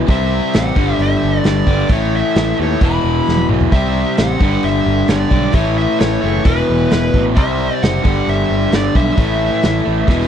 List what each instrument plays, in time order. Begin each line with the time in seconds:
0.08 picked electric bass C2, distorted electric guitar C3 G3 C4, lead electric guitar E5, kick, open hi-hat
0.54 picked electric bass A1, lead electric guitar F#5, snare, open hi-hat
0.75 picked electric bass G1, distorted electric guitar G2 D3 G3, kick
0.99 picked electric bass G1, lead electric guitar E5, open hi-hat
1.23 picked electric bass G1
1.44 picked electric bass G1, distorted electric guitar G2 D3 G3, lead electric guitar D5, snare, open hi-hat
1.67 picked electric bass G1, overdriven electric guitar D3 G3, kick
1.71 overdriven electric guitar G2
1.89 picked electric bass A1, distorted electric guitar A2 E3 A3, kick, open hi-hat
1.93 lead electric guitar C#5
2.16 lead electric guitar E5
2.35 picked electric bass A1, snare, open hi-hat
2.57 picked electric bass D#2, distorted electric guitar A2 E3 A3
2.63 lead electric guitar C#5
2.81 picked electric bass E1, distorted electric guitar E2 B2 E3, kick, open hi-hat
2.85 lead electric guitar B5
3.04 picked electric bass E1
3.28 picked electric bass E1, snare
3.37 high tom
3.49 picked electric bass B1, distorted electric guitar E2 B2 E3, mid tom
3.61 floor tom
3.72 picked electric bass C2, distorted electric guitar C3 G3 C4, lead electric guitar E5, kick, open hi-hat
4.17 picked electric bass A1, lead electric guitar F#5, snare, open hi-hat
4.41 picked electric bass G1, distorted electric guitar G2 D3 G3, kick
4.63 picked electric bass G1, lead electric guitar E5, open hi-hat
4.87 picked electric bass G1
5.08 picked electric bass G1, distorted electric guitar G2 D3 G3, lead electric guitar D5, snare, open hi-hat
5.31 picked electric bass B1, overdriven electric guitar G2 D3 G3, kick
5.53 picked electric bass A1, distorted electric guitar A2 E3 A3, lead electric guitar C#5, kick, open hi-hat
5.78 lead electric guitar E5
6.00 picked electric bass A1, lead electric guitar C#5, snare, open hi-hat
6.21 picked electric bass F#1, distorted electric guitar A2 E3 A3
6.44 picked electric bass E1, distorted electric guitar E2 B2 E3, lead electric guitar B4, kick, open hi-hat
6.70 picked electric bass E1
6.91 picked electric bass E1, lead electric guitar B4, snare, open hi-hat
7.14 picked electric bass A1, distorted electric guitar E2 B2 E3, kick
7.35 picked electric bass C2, distorted electric guitar C3 G3 C4, lead electric guitar E5, kick, open hi-hat
7.83 picked electric bass F#1, lead electric guitar F#5, snare, open hi-hat
8.02 picked electric bass G1, distorted electric guitar G2 D3 G3, kick
8.28 picked electric bass G1, lead electric guitar E5, open hi-hat
8.50 picked electric bass G1
8.71 picked electric bass G1, distorted electric guitar G2 D3 G3, snare, open hi-hat
8.75 lead electric guitar D5
8.95 picked electric bass B1, overdriven electric guitar G2 D3 G3, lead electric guitar E5, kick
9.17 picked electric bass A1, distorted electric guitar A2 E3 A3, kick, open hi-hat
9.63 picked electric bass A1, snare, open hi-hat
9.85 picked electric bass A1, distorted electric guitar A2 E3 A3
10.05 picked electric bass E1, distorted electric guitar E2 B2 E3, kick, snare
10.21 snare